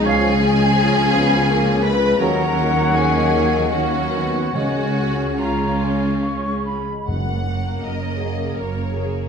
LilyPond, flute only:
\new Staff \with { instrumentName = "Flute" } { \time 3/4 \key fis \major \tempo 4 = 79 eis''8 r2 r8 | fis''2 fis''4 | gis''4 ais''8 gis''8 cis'''8 b''8 | r2. | }